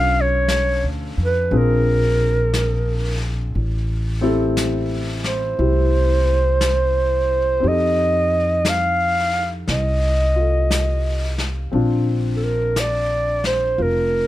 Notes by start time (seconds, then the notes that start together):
Already playing: B1 C#4 D4 F4 A4 F5
0.21 C#5
0.48 brush sweep, snare, hi-hat pedal
0.84 D2
1.18 F2
1.25 B4
1.51 A#1 C4 D4 F4 G#4, brush sweep
1.57 A#4
2.54 brush sweep, snare, hi-hat pedal
3.55 A1, brush sweep
4.21 C4 E4 G4 A4
4.57 brush sweep, snare, hi-hat pedal
5.24 C5, snare
5.59 C2 E4 G4, brush sweep
6.61 brush sweep, snare, hi-hat pedal
7.60 F2 C4 D#4 G4, brush sweep
7.65 A4 D#5
8.65 brush sweep, snare, hi-hat pedal
8.69 F5
9.68 C2 D#5, brush sweep, snare
10.36 F4 A4
10.71 brush sweep, snare, hi-hat pedal
11.38 snare
11.72 A#1 C4 D4 F4, brush sweep
12.36 A4
12.43 A#4
12.76 D5, brush sweep, snare, hi-hat pedal
13.44 C5, snare
13.78 F1 F4, brush sweep
13.82 A#4